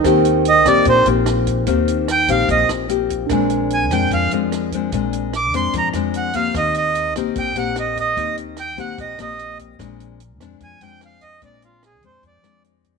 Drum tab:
HH |xxxxxxxx|xxxxxxxx|xxxxxxxx|xxxxxxxx|
SD |r--r--r-|--r--r--|r--r--r-|--r--r--|
BD |o--oo--o|o--oo--o|o--oo--o|o--oo--o|

HH |xxxxxxxx|xxxxxxxx|xxxxxxxx|xxxxxxxx|
SD |r--r--r-|--r--r--|r--r--r-|--r--r--|
BD |o--oo--o|o--oo--o|o--oo--o|o--oo--o|